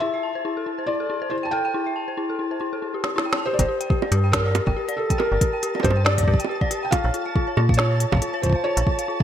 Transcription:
Already playing: synth texture A5
0.00 synth bell E4, felt piano E5
0.14 synth bell E5
0.23 synth bell A5
0.35 synth bell C5
0.45 synth bell E4
0.57 synth bell A4
0.66 synth bell E4
0.78 synth bell C5
0.86 synth bell E4, felt piano D5
1.00 synth bell A4
1.10 synth bell E4
1.22 synth bell C5
1.30 synth bell E4, felt piano C5
1.43 synth bell G5, felt piano A5
1.51 synth bell A4, felt piano G5
1.65 synth bell G5
1.74 synth bell E4
1.86 synth bell E5
1.96 synth bell A5
2.08 synth bell C5
2.17 synth bell E4
2.30 synth bell A4
2.39 synth bell E4
2.51 synth bell C5
2.61 synth bell E4
2.73 synth bell A4
2.82 synth bell E4
2.94 synth bell G4
3.04 synth bell G4, snare
3.16 synth bell E4, snare
3.25 synth bell G5
3.33 snare
3.38 synth bell A5
3.46 synth bell G4, felt piano C5, synth texture A5
3.53 felt piano D5
3.59 fm bass G1, felt piano C5, synth bell D5, kick, closed hi-hat
3.68 synth bell G4
3.81 synth bell G5, closed hi-hat
3.90 synth bell G4, kick
4.02 synth bell D5, high bongo
4.12 fm bass G2, synth bell G4, closed hi-hat
4.24 synth bell G5
4.32 synth bell G4, felt piano A#4, kick, snare, closed hi-hat
4.45 synth bell D5
4.55 synth bell G4, closed hi-hat, high bongo
4.67 fm bass G1, synth bell G5, kick
4.76 synth bell G4
4.88 synth bell D5, closed hi-hat
4.97 synth bell G4, felt piano A4
5.10 synth bell G5, kick, closed hi-hat
5.18 synth bell G4, felt piano A#4, high bongo
5.32 fm bass G1, synth bell D5
5.41 synth bell G4, kick, closed hi-hat
5.53 synth bell G5
5.63 synth bell G4, closed hi-hat
5.75 synth bell D5, high bongo
5.80 felt piano C5, high bongo
5.84 fm bass G2, synth bell G4, kick, closed hi-hat, high bongo
5.90 high bongo
5.96 synth bell G5
6.05 synth bell G4, felt piano D5, snare
6.18 synth bell D5, kick, closed hi-hat
6.23 kick
6.28 fm bass G2, synth bell G4, kick
6.34 kick
6.40 synth bell G5, closed hi-hat
6.45 high bongo
6.49 synth bell G4
6.61 synth bell D5, kick
6.71 synth bell G4, closed hi-hat
6.83 synth bell G5, felt piano G5
6.91 synth bell F4, felt piano F5, kick, closed hi-hat, high bongo
7.04 fm bass A#1, synth bell C#5
7.14 synth bell F4, closed hi-hat
7.26 synth bell F5
7.36 synth bell F4, kick
7.48 synth bell C#5
7.57 fm bass A#2, synth bell F4, high bongo
7.69 synth bell F5, kick
7.74 felt piano C#5, closed hi-hat
7.79 synth bell F4, snare
7.91 synth bell C#5
8.00 synth bell F4, closed hi-hat
8.12 fm bass A#1, synth bell F5, kick, high bongo
8.15 kick
8.17 kick
8.19 synth bell F4, kick, closed hi-hat
8.34 synth bell C#5
8.42 synth bell F4, felt piano C5, kick, closed hi-hat
8.46 kick
8.49 kick
8.52 synth bell F5, kick
8.64 synth bell F4, felt piano C#5
8.77 fm bass A#1, synth bell C#5, closed hi-hat
8.87 synth bell F4, kick
8.99 synth bell F5, closed hi-hat
9.08 synth bell F4

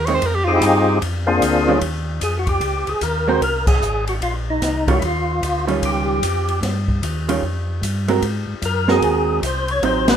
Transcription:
Already playing: tonewheel organ D#2
0.06 hollow-body jazz guitar D#3 G#3 C4, tenor saxophone C#5, ride
0.15 tenor saxophone C5
0.21 tonewheel organ F2, kick, ride
0.26 tenor saxophone A#4
0.35 tenor saxophone G4
0.45 tonewheel organ C4 D#4 F4 G4 G#4, tenor saxophone F4
0.56 tenor saxophone E4
0.61 tonewheel organ G2, kick, hi-hat pedal, ride
0.66 tenor saxophone D#4
1.01 tonewheel organ F2, kick, ride
1.27 tonewheel organ A#3 C4 D4 F4 G#4
1.41 tonewheel organ D2, kick, hi-hat pedal, ride
1.68 hollow-body jazz guitar D#3 G3 C#4 F4
1.81 tonewheel organ D#2, kick, ride
2.21 tonewheel organ F2 G#4, kick, hi-hat pedal, ride
2.39 tonewheel organ F#4
2.47 tonewheel organ G4, kick, ride
2.61 tonewheel organ C#2, kick, ride
2.87 tonewheel organ C#2 G#4, ride
3.01 tonewheel organ D#2 A#4, kick, hi-hat pedal, ride
3.28 hollow-body jazz guitar G#3 C4 F#4 A#4, tonewheel organ C5
3.41 tonewheel organ C2 A#4, kick, ride
3.67 tonewheel organ G#4, kick, crash
3.82 tonewheel organ G#1, hi-hat pedal
4.07 tonewheel organ F#4, ride
4.21 tonewheel organ A#1 F4, kick, ride
4.50 tonewheel organ D#4
4.61 tonewheel organ C2, kick, snare, hi-hat pedal, ride
4.88 hollow-body jazz guitar D#3 G3 C#4 F4, tonewheel organ F#4, kick, ride
4.99 tonewheel organ D#2 E4, kick, ride
5.05 tonewheel organ F4
5.42 tonewheel organ D2, kick, hi-hat pedal, ride
5.67 hollow-body jazz guitar D#3 G3 C#4 F4, ride
5.82 tonewheel organ C#2 G4, kick, ride
6.22 tonewheel organ F2, kick, hi-hat pedal, ride
6.48 ride
6.62 tonewheel organ G2, kick, snare, ride
6.88 kick
7.02 tonewheel organ D#2, kick, hi-hat pedal, ride
7.29 hollow-body jazz guitar D#3 G3 C#4 F4, ride
7.42 tonewheel organ F2, kick
7.82 tonewheel organ G2, kick, hi-hat pedal, ride
8.08 hollow-body jazz guitar G#3 C4 F#4 A#4, ride
8.22 tonewheel organ G#2, kick, ride
8.47 tonewheel organ G#2
8.62 tonewheel organ F#2 A#4, kick, hi-hat pedal, ride
8.88 hollow-body jazz guitar G#3 C4 F#4 A#4, tonewheel organ G#4, snare
9.02 tonewheel organ D#2, kick, ride
9.42 tonewheel organ C2 C5, kick, hi-hat pedal, ride
9.68 tonewheel organ C#5, ride
9.83 tonewheel organ A1 C5, hollow-body jazz guitar F#3 C4 D#4, kick, ride
10.08 tonewheel organ B4, snare, ride

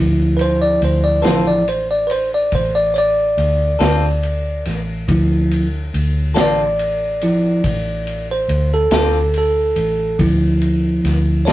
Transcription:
Already playing: fingered electric bass D2, tine electric piano F3 C4 E4
0.37 tine electric piano B4, ride
0.41 tine electric piano C5
0.62 tine electric piano D5
0.81 fingered electric bass D2, tine electric piano C5, ride
1.04 tine electric piano D5
1.22 fingered electric bass A1, clean electric guitar D3 C4 F4 A4, tine electric piano F3 C4 E4 B4, snare, ride
1.26 tine electric piano C5
1.47 tine electric piano D5
1.68 tine electric piano C5, ride
1.91 tine electric piano D5
2.07 tine electric piano B4, ride
2.11 tine electric piano C5
2.34 tine electric piano D5
2.52 fingered electric bass A1, tine electric piano C5, kick, ride
2.75 tine electric piano D5
2.94 tine electric piano C#5, ride
2.98 tine electric piano D5
3.38 fingered electric bass D2, ride
3.79 fingered electric bass D2, clean electric guitar D3 C4 F4 A4, snare, ride
4.23 ride
4.65 fingered electric bass A1, snare, ride
5.08 fingered electric bass D2, tine electric piano F3 C4 E4, kick, ride
5.51 ride
5.94 fingered electric bass D2, ride
6.34 fingered electric bass A1, clean electric guitar D3 C4 F4 A4, tine electric piano C#5, snare, ride
6.41 tine electric piano D5
6.79 ride
7.21 tine electric piano F3 C4 E4, ride
7.64 fingered electric bass A1, kick, ride
8.07 ride
8.31 tine electric piano C5
8.48 fingered electric bass D2, ride
8.74 tine electric piano A4
8.91 fingered electric bass D2, clean electric guitar D3 C4 F4 A4, snare, ride
9.34 ride
9.38 tine electric piano A4
9.76 fingered electric bass A1, ride
10.19 fingered electric bass D2, tine electric piano F3 C4 E4, kick, ride
10.62 ride
11.04 fingered electric bass D2, snare, ride
11.45 fingered electric bass A1, clean electric guitar D3 C4 F4 A4, tine electric piano C#5, snare, ride

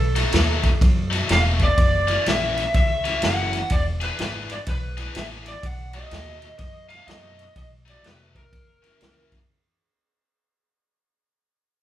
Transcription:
Already playing: upright bass B1, electric slide guitar A4
0.16 overdriven electric guitar B2 F#3 A3 D#4, snare, ride
0.32 upright bass D#2, overdriven electric guitar B2 F#3 A3 D#4, snare, ride
0.63 kick, snare, ride
0.81 upright bass F#2, kick, snare, ride
1.10 overdriven electric guitar B2 F#3 A3 D#4, snare, ride
1.28 upright bass E1, overdriven electric guitar B2 F#3 A3 D#4, snare, ride
1.32 lead electric guitar F5
1.59 lead electric guitar D5, kick, snare, ride
1.78 upright bass F#1, kick, snare, ride
2.07 overdriven electric guitar F#2 E3 A#3 C#4, snare, ride
2.25 upright bass A#1, overdriven electric guitar F#2 E3 A#3 C#4, lead electric guitar E5, snare, ride
2.57 snare, ride
2.74 upright bass C#2, lead electric guitar E5, kick, snare, ride
3.04 overdriven electric guitar F#2 E3 A#3 C#4, snare, ride
3.21 upright bass F#1, overdriven electric guitar F#2 E3 A#3 C#4, lead electric guitar F#5, snare, ride
3.53 snare, ride
3.70 upright bass E1, lead electric guitar D5, kick, snare, ride
4.01 overdriven electric guitar E3 B3 D4 G#4, lead electric guitar B4, snare, ride
4.18 upright bass G#1, overdriven electric guitar E3 B3 D4 G#4, snare, ride
4.22 lead electric guitar B4
4.50 lead electric guitar D5, snare, ride
4.67 upright bass B1, lead electric guitar B4, kick, snare, ride
4.97 overdriven electric guitar E3 B3 D4 G#4, snare, ride
5.15 upright bass A1, overdriven electric guitar E3 B3 D4 G#4, lead electric guitar E5, snare, ride
5.46 lead electric guitar D5, snare, ride
5.63 upright bass B1, lead electric guitar F#5, kick, snare, ride
5.93 overdriven electric guitar B2 F#3 A3 D#4, lead electric guitar D#5, snare, ride
6.10 upright bass D#2, overdriven electric guitar B2 F#3 A3 D#4, snare, ride
6.42 snare, ride
6.58 upright bass F#2, lead electric guitar D#5, kick, snare, ride
6.89 overdriven electric guitar B2 F#3 A3 D#4, lead electric guitar F5, snare, ride
7.07 upright bass F#2, overdriven electric guitar B2 F#3 A3 D#4, lead electric guitar D#5, snare, ride
7.39 snare, ride
7.56 upright bass B1, lead electric guitar D#5, kick, snare, ride
7.86 overdriven electric guitar B2 F#3 A3 D#4, lead electric guitar D5, snare, ride
8.03 upright bass F1, overdriven electric guitar B2 F#3 A3 D#4, lead electric guitar B4, snare, ride
8.35 lead electric guitar A#4, kick, snare, ride
8.53 upright bass F#1, kick, snare, ride
8.82 overdriven electric guitar F#2 E3 A#3 C#4, snare, ride
9.01 upright bass C#2, overdriven electric guitar F#2 E3 A#3 C#4, snare, ride
9.32 kick, snare, ride

